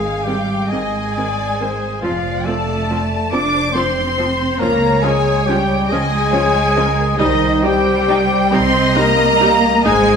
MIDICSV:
0, 0, Header, 1, 10, 480
1, 0, Start_track
1, 0, Tempo, 879765
1, 1104, Time_signature, 6, 3, 24, 8
1, 1579, Tempo, 862069
1, 3979, Tempo, 883652
1, 5587, End_track
2, 0, Start_track
2, 0, Title_t, "Flute section"
2, 0, Program_c, 0, 73
2, 0, Note_on_c, 0, 80, 64
2, 136, Note_off_c, 0, 80, 0
2, 136, Note_on_c, 0, 79, 67
2, 379, Note_on_c, 0, 80, 83
2, 383, Note_off_c, 0, 79, 0
2, 957, Note_off_c, 0, 80, 0
2, 1088, Note_on_c, 0, 77, 80
2, 1334, Note_off_c, 0, 77, 0
2, 1334, Note_on_c, 0, 81, 80
2, 1804, Note_off_c, 0, 81, 0
2, 1817, Note_on_c, 0, 86, 94
2, 2053, Note_off_c, 0, 86, 0
2, 2054, Note_on_c, 0, 84, 73
2, 2528, Note_on_c, 0, 82, 92
2, 2529, Note_off_c, 0, 84, 0
2, 2757, Note_on_c, 0, 80, 86
2, 2767, Note_off_c, 0, 82, 0
2, 3008, Note_on_c, 0, 79, 88
2, 3009, Note_off_c, 0, 80, 0
2, 3249, Note_on_c, 0, 80, 117
2, 3253, Note_off_c, 0, 79, 0
2, 3852, Note_off_c, 0, 80, 0
2, 3975, Note_on_c, 0, 75, 110
2, 4213, Note_off_c, 0, 75, 0
2, 4213, Note_on_c, 0, 79, 101
2, 4689, Note_on_c, 0, 84, 107
2, 4698, Note_off_c, 0, 79, 0
2, 4922, Note_on_c, 0, 82, 107
2, 4935, Note_off_c, 0, 84, 0
2, 5399, Note_off_c, 0, 82, 0
2, 5402, Note_on_c, 0, 80, 116
2, 5587, Note_off_c, 0, 80, 0
2, 5587, End_track
3, 0, Start_track
3, 0, Title_t, "Violin section"
3, 0, Program_c, 1, 48
3, 0, Note_on_c, 1, 80, 72
3, 130, Note_off_c, 1, 80, 0
3, 131, Note_on_c, 1, 79, 81
3, 377, Note_on_c, 1, 80, 89
3, 381, Note_off_c, 1, 79, 0
3, 1099, Note_off_c, 1, 80, 0
3, 1111, Note_on_c, 1, 77, 85
3, 1340, Note_off_c, 1, 77, 0
3, 1340, Note_on_c, 1, 81, 93
3, 1816, Note_off_c, 1, 81, 0
3, 1820, Note_on_c, 1, 86, 114
3, 2055, Note_off_c, 1, 86, 0
3, 2055, Note_on_c, 1, 84, 99
3, 2522, Note_on_c, 1, 82, 98
3, 2530, Note_off_c, 1, 84, 0
3, 2764, Note_off_c, 1, 82, 0
3, 2767, Note_on_c, 1, 80, 100
3, 3014, Note_off_c, 1, 80, 0
3, 3021, Note_on_c, 1, 79, 96
3, 3258, Note_on_c, 1, 80, 114
3, 3260, Note_off_c, 1, 79, 0
3, 3967, Note_on_c, 1, 75, 104
3, 3980, Note_off_c, 1, 80, 0
3, 4209, Note_off_c, 1, 75, 0
3, 4226, Note_on_c, 1, 79, 112
3, 4695, Note_off_c, 1, 79, 0
3, 4697, Note_on_c, 1, 84, 124
3, 4932, Note_on_c, 1, 82, 126
3, 4939, Note_off_c, 1, 84, 0
3, 5411, Note_on_c, 1, 80, 127
3, 5414, Note_off_c, 1, 82, 0
3, 5587, Note_off_c, 1, 80, 0
3, 5587, End_track
4, 0, Start_track
4, 0, Title_t, "Violin section"
4, 0, Program_c, 2, 48
4, 0, Note_on_c, 2, 77, 72
4, 369, Note_off_c, 2, 77, 0
4, 388, Note_on_c, 2, 75, 68
4, 629, Note_off_c, 2, 75, 0
4, 633, Note_on_c, 2, 74, 70
4, 867, Note_on_c, 2, 72, 66
4, 869, Note_off_c, 2, 74, 0
4, 1104, Note_off_c, 2, 72, 0
4, 1107, Note_on_c, 2, 74, 66
4, 1817, Note_on_c, 2, 72, 79
4, 1819, Note_off_c, 2, 74, 0
4, 2515, Note_off_c, 2, 72, 0
4, 2526, Note_on_c, 2, 73, 86
4, 3246, Note_on_c, 2, 75, 89
4, 3256, Note_off_c, 2, 73, 0
4, 3484, Note_on_c, 2, 73, 88
4, 3485, Note_off_c, 2, 75, 0
4, 3730, Note_off_c, 2, 73, 0
4, 3733, Note_on_c, 2, 70, 82
4, 3964, Note_on_c, 2, 72, 80
4, 3979, Note_off_c, 2, 70, 0
4, 4694, Note_off_c, 2, 72, 0
4, 4699, Note_on_c, 2, 75, 106
4, 5417, Note_off_c, 2, 75, 0
4, 5423, Note_on_c, 2, 72, 99
4, 5587, Note_off_c, 2, 72, 0
4, 5587, End_track
5, 0, Start_track
5, 0, Title_t, "Clarinet"
5, 0, Program_c, 3, 71
5, 0, Note_on_c, 3, 68, 69
5, 138, Note_on_c, 3, 67, 74
5, 146, Note_off_c, 3, 68, 0
5, 384, Note_on_c, 3, 68, 76
5, 393, Note_off_c, 3, 67, 0
5, 1096, Note_off_c, 3, 68, 0
5, 1099, Note_on_c, 3, 65, 76
5, 1343, Note_on_c, 3, 69, 77
5, 1351, Note_off_c, 3, 65, 0
5, 1671, Note_off_c, 3, 69, 0
5, 1816, Note_on_c, 3, 74, 82
5, 2054, Note_on_c, 3, 72, 77
5, 2062, Note_off_c, 3, 74, 0
5, 2525, Note_off_c, 3, 72, 0
5, 2528, Note_on_c, 3, 70, 93
5, 2764, Note_on_c, 3, 68, 85
5, 2772, Note_off_c, 3, 70, 0
5, 3002, Note_off_c, 3, 68, 0
5, 3005, Note_on_c, 3, 67, 98
5, 3249, Note_on_c, 3, 68, 101
5, 3257, Note_off_c, 3, 67, 0
5, 3969, Note_on_c, 3, 63, 91
5, 3977, Note_off_c, 3, 68, 0
5, 4210, Note_on_c, 3, 67, 110
5, 4218, Note_off_c, 3, 63, 0
5, 4698, Note_on_c, 3, 72, 97
5, 4706, Note_off_c, 3, 67, 0
5, 4943, Note_on_c, 3, 70, 104
5, 4951, Note_off_c, 3, 72, 0
5, 5271, Note_off_c, 3, 70, 0
5, 5424, Note_on_c, 3, 68, 108
5, 5587, Note_off_c, 3, 68, 0
5, 5587, End_track
6, 0, Start_track
6, 0, Title_t, "Oboe"
6, 0, Program_c, 4, 68
6, 0, Note_on_c, 4, 68, 68
6, 125, Note_on_c, 4, 67, 67
6, 133, Note_off_c, 4, 68, 0
6, 372, Note_on_c, 4, 68, 84
6, 381, Note_off_c, 4, 67, 0
6, 1094, Note_off_c, 4, 68, 0
6, 1097, Note_on_c, 4, 65, 80
6, 1339, Note_on_c, 4, 69, 78
6, 1347, Note_off_c, 4, 65, 0
6, 1669, Note_off_c, 4, 69, 0
6, 1812, Note_on_c, 4, 74, 88
6, 2039, Note_on_c, 4, 72, 75
6, 2048, Note_off_c, 4, 74, 0
6, 2524, Note_on_c, 4, 70, 83
6, 2532, Note_off_c, 4, 72, 0
6, 2776, Note_on_c, 4, 68, 89
6, 2784, Note_off_c, 4, 70, 0
6, 3012, Note_on_c, 4, 67, 86
6, 3020, Note_off_c, 4, 68, 0
6, 3255, Note_off_c, 4, 67, 0
6, 3258, Note_on_c, 4, 68, 106
6, 3966, Note_off_c, 4, 68, 0
6, 3973, Note_on_c, 4, 63, 106
6, 4212, Note_off_c, 4, 63, 0
6, 4222, Note_on_c, 4, 67, 106
6, 4692, Note_off_c, 4, 67, 0
6, 4704, Note_on_c, 4, 72, 101
6, 4931, Note_on_c, 4, 70, 103
6, 4939, Note_off_c, 4, 72, 0
6, 5265, Note_off_c, 4, 70, 0
6, 5410, Note_on_c, 4, 68, 113
6, 5587, Note_off_c, 4, 68, 0
6, 5587, End_track
7, 0, Start_track
7, 0, Title_t, "Viola section"
7, 0, Program_c, 5, 48
7, 151, Note_on_c, 5, 51, 53
7, 151, Note_on_c, 5, 60, 53
7, 195, Note_off_c, 5, 51, 0
7, 195, Note_off_c, 5, 60, 0
7, 393, Note_on_c, 5, 51, 54
7, 394, Note_on_c, 5, 60, 55
7, 437, Note_off_c, 5, 51, 0
7, 438, Note_off_c, 5, 60, 0
7, 635, Note_on_c, 5, 60, 53
7, 639, Note_on_c, 5, 51, 58
7, 679, Note_off_c, 5, 60, 0
7, 683, Note_off_c, 5, 51, 0
7, 872, Note_on_c, 5, 60, 56
7, 874, Note_on_c, 5, 51, 53
7, 916, Note_off_c, 5, 60, 0
7, 918, Note_off_c, 5, 51, 0
7, 1107, Note_on_c, 5, 53, 66
7, 1107, Note_on_c, 5, 60, 65
7, 1150, Note_off_c, 5, 60, 0
7, 1151, Note_off_c, 5, 53, 0
7, 1346, Note_on_c, 5, 60, 52
7, 1348, Note_on_c, 5, 53, 55
7, 1390, Note_off_c, 5, 60, 0
7, 1391, Note_off_c, 5, 53, 0
7, 1582, Note_on_c, 5, 60, 57
7, 1586, Note_on_c, 5, 53, 59
7, 1626, Note_off_c, 5, 60, 0
7, 1631, Note_off_c, 5, 53, 0
7, 1815, Note_on_c, 5, 60, 66
7, 1816, Note_on_c, 5, 53, 61
7, 1860, Note_off_c, 5, 60, 0
7, 1861, Note_off_c, 5, 53, 0
7, 2052, Note_on_c, 5, 60, 68
7, 2054, Note_on_c, 5, 53, 66
7, 2096, Note_off_c, 5, 60, 0
7, 2099, Note_off_c, 5, 53, 0
7, 2293, Note_on_c, 5, 60, 66
7, 2295, Note_on_c, 5, 53, 63
7, 2338, Note_off_c, 5, 60, 0
7, 2340, Note_off_c, 5, 53, 0
7, 2533, Note_on_c, 5, 61, 78
7, 2535, Note_on_c, 5, 53, 72
7, 2578, Note_off_c, 5, 61, 0
7, 2580, Note_off_c, 5, 53, 0
7, 2770, Note_on_c, 5, 53, 64
7, 2773, Note_on_c, 5, 61, 70
7, 2815, Note_off_c, 5, 53, 0
7, 2817, Note_off_c, 5, 61, 0
7, 3018, Note_on_c, 5, 61, 65
7, 3021, Note_on_c, 5, 53, 69
7, 3062, Note_off_c, 5, 61, 0
7, 3065, Note_off_c, 5, 53, 0
7, 3259, Note_on_c, 5, 61, 69
7, 3261, Note_on_c, 5, 53, 75
7, 3303, Note_off_c, 5, 61, 0
7, 3305, Note_off_c, 5, 53, 0
7, 3489, Note_on_c, 5, 61, 71
7, 3490, Note_on_c, 5, 53, 70
7, 3533, Note_off_c, 5, 61, 0
7, 3534, Note_off_c, 5, 53, 0
7, 3734, Note_on_c, 5, 53, 76
7, 3735, Note_on_c, 5, 61, 75
7, 3778, Note_off_c, 5, 53, 0
7, 3780, Note_off_c, 5, 61, 0
7, 3967, Note_on_c, 5, 55, 87
7, 3970, Note_on_c, 5, 63, 83
7, 4011, Note_off_c, 5, 55, 0
7, 4014, Note_off_c, 5, 63, 0
7, 4211, Note_on_c, 5, 55, 71
7, 4211, Note_on_c, 5, 63, 71
7, 4255, Note_off_c, 5, 55, 0
7, 4255, Note_off_c, 5, 63, 0
7, 4456, Note_on_c, 5, 55, 84
7, 4459, Note_on_c, 5, 63, 84
7, 4499, Note_off_c, 5, 55, 0
7, 4502, Note_off_c, 5, 63, 0
7, 4690, Note_on_c, 5, 55, 74
7, 4694, Note_on_c, 5, 63, 85
7, 4734, Note_off_c, 5, 55, 0
7, 4738, Note_off_c, 5, 63, 0
7, 4930, Note_on_c, 5, 63, 85
7, 4931, Note_on_c, 5, 55, 77
7, 4973, Note_off_c, 5, 63, 0
7, 4975, Note_off_c, 5, 55, 0
7, 5176, Note_on_c, 5, 55, 83
7, 5176, Note_on_c, 5, 63, 84
7, 5219, Note_off_c, 5, 63, 0
7, 5220, Note_off_c, 5, 55, 0
7, 5414, Note_on_c, 5, 56, 92
7, 5414, Note_on_c, 5, 63, 94
7, 5457, Note_off_c, 5, 56, 0
7, 5458, Note_off_c, 5, 63, 0
7, 5587, End_track
8, 0, Start_track
8, 0, Title_t, "Cello section"
8, 0, Program_c, 6, 48
8, 0, Note_on_c, 6, 56, 71
8, 137, Note_off_c, 6, 56, 0
8, 140, Note_on_c, 6, 55, 63
8, 386, Note_off_c, 6, 55, 0
8, 390, Note_on_c, 6, 56, 70
8, 1101, Note_on_c, 6, 53, 74
8, 1105, Note_off_c, 6, 56, 0
8, 1340, Note_off_c, 6, 53, 0
8, 1340, Note_on_c, 6, 57, 79
8, 1814, Note_on_c, 6, 62, 89
8, 1816, Note_off_c, 6, 57, 0
8, 2052, Note_off_c, 6, 62, 0
8, 2052, Note_on_c, 6, 60, 81
8, 2519, Note_off_c, 6, 60, 0
8, 2526, Note_on_c, 6, 58, 100
8, 2767, Note_on_c, 6, 56, 92
8, 2770, Note_off_c, 6, 58, 0
8, 3008, Note_on_c, 6, 55, 85
8, 3014, Note_off_c, 6, 56, 0
8, 3253, Note_off_c, 6, 55, 0
8, 3255, Note_on_c, 6, 56, 107
8, 3972, Note_on_c, 6, 51, 95
8, 3978, Note_off_c, 6, 56, 0
8, 4212, Note_off_c, 6, 51, 0
8, 4216, Note_on_c, 6, 55, 106
8, 4689, Note_off_c, 6, 55, 0
8, 4692, Note_on_c, 6, 60, 111
8, 4931, Note_on_c, 6, 58, 103
8, 4936, Note_off_c, 6, 60, 0
8, 5413, Note_off_c, 6, 58, 0
8, 5414, Note_on_c, 6, 56, 115
8, 5587, Note_off_c, 6, 56, 0
8, 5587, End_track
9, 0, Start_track
9, 0, Title_t, "French horn section"
9, 0, Program_c, 7, 60
9, 0, Note_on_c, 7, 56, 74
9, 128, Note_on_c, 7, 55, 64
9, 134, Note_off_c, 7, 56, 0
9, 379, Note_on_c, 7, 56, 72
9, 380, Note_off_c, 7, 55, 0
9, 1100, Note_off_c, 7, 56, 0
9, 1101, Note_on_c, 7, 53, 72
9, 1335, Note_off_c, 7, 53, 0
9, 1336, Note_on_c, 7, 57, 86
9, 1813, Note_on_c, 7, 62, 93
9, 1814, Note_off_c, 7, 57, 0
9, 2027, Note_on_c, 7, 60, 84
9, 2051, Note_off_c, 7, 62, 0
9, 2507, Note_on_c, 7, 58, 88
9, 2516, Note_off_c, 7, 60, 0
9, 2756, Note_off_c, 7, 58, 0
9, 2776, Note_on_c, 7, 56, 98
9, 3009, Note_on_c, 7, 55, 81
9, 3019, Note_off_c, 7, 56, 0
9, 3254, Note_off_c, 7, 55, 0
9, 3260, Note_on_c, 7, 56, 98
9, 3981, Note_off_c, 7, 56, 0
9, 3985, Note_on_c, 7, 51, 98
9, 4215, Note_on_c, 7, 55, 115
9, 4218, Note_off_c, 7, 51, 0
9, 4699, Note_off_c, 7, 55, 0
9, 4701, Note_on_c, 7, 60, 96
9, 4941, Note_off_c, 7, 60, 0
9, 4945, Note_on_c, 7, 58, 116
9, 5421, Note_off_c, 7, 58, 0
9, 5427, Note_on_c, 7, 56, 113
9, 5587, Note_off_c, 7, 56, 0
9, 5587, End_track
10, 0, Start_track
10, 0, Title_t, "Double bass section"
10, 0, Program_c, 8, 48
10, 0, Note_on_c, 8, 32, 72
10, 300, Note_off_c, 8, 32, 0
10, 392, Note_on_c, 8, 32, 61
10, 1022, Note_off_c, 8, 32, 0
10, 1107, Note_on_c, 8, 29, 72
10, 1735, Note_off_c, 8, 29, 0
10, 1817, Note_on_c, 8, 29, 75
10, 2444, Note_off_c, 8, 29, 0
10, 2523, Note_on_c, 8, 37, 82
10, 3170, Note_off_c, 8, 37, 0
10, 3258, Note_on_c, 8, 37, 84
10, 3893, Note_off_c, 8, 37, 0
10, 3984, Note_on_c, 8, 36, 102
10, 4619, Note_off_c, 8, 36, 0
10, 4706, Note_on_c, 8, 36, 103
10, 5336, Note_off_c, 8, 36, 0
10, 5419, Note_on_c, 8, 32, 104
10, 5587, Note_off_c, 8, 32, 0
10, 5587, End_track
0, 0, End_of_file